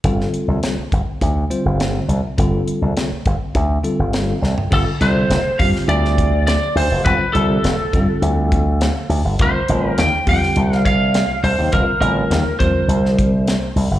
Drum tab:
CC |----------------|----------------|x---------------|----------------|
HH |x-x-x-x-x-x-x-x-|x-x-x-x-x-x-x---|--x-x-o-x-x-x-o-|x-x-x-x-x-x-x-o-|
SD |-o--o-------o---|----o-------o-o-|--o-o--o-o--o---|----o-------o---|
FT |----------------|---------------o|----------------|----------------|
BD |o-----o-o-------|o-----o-o-------|o-----o---o-----|o-----o---o-----|

CC |----------------|----------------|
HH |x-x-x-o-x-x-x-o-|x-x-x-x-x-x-x-o-|
SD |----o--o-o--o---|----o----o--o---|
FT |----------------|----------------|
BD |o-----o---o-----|o-----o---o-----|